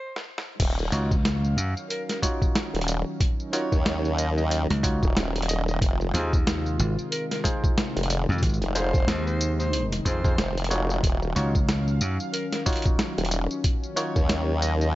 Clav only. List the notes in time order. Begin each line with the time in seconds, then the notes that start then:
0.92 D#4 F4 F#4 C#5
2.22 D#4 F4 F#4 C#5
3.53 D#4 F4 F#4 C#5
4.83 D#4 F4 F#4 C#5
6.14 D#4 F4 G#4 C5
7.44 D#4 F4 G#4 C5
8.75 D#4 F4 G#4 C5
10.05 D#4 F4 G#4 C5
10.24 D#4 F4 G#4 C5
10.70 D#4 F4 F#4 C#5
11.36 D#4 F4 F#4 C#5
12.66 D#4 F4 F#4 C#5
13.96 D#4 F4 F#4 C#5